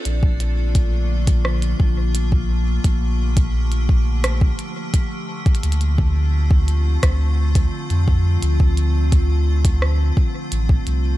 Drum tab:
HH |x---x---x-----x---x-----x-------|x-----x---x-----x---x---x-----xx|xxx---------x---x-----x---x-----|x---x---x-----x---------x---x---|
SD |----------------r---------------|----------------r---------------|----------------r---------------|----------------r---------------|
BD |--o-----o-----o-----o-----o-----|o-----o-----o-----o-----o-----o-|----o-----o-----o-----o-----o---|--o-----o-----o-----o-----o-----|